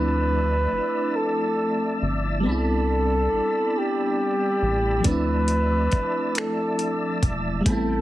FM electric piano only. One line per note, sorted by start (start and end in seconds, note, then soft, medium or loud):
0.00 2.38 F3 medium
0.00 2.39 A3 soft
0.00 2.41 C4 soft
0.00 2.42 D4 soft
0.00 2.43 E4 medium
2.40 4.99 G3 medium
2.40 5.01 B3 medium
2.46 5.02 C4 medium
2.46 5.03 D4 medium
2.52 5.05 E4 medium
5.00 7.59 F3 medium
5.00 7.61 A3 medium
5.06 7.62 C4 medium
5.06 7.63 D4 soft
5.11 7.65 E4 medium
7.61 8.01 G3 medium
7.61 8.01 A3 medium
7.67 8.01 B3 soft
7.67 8.01 C4 soft
7.72 8.01 E4 medium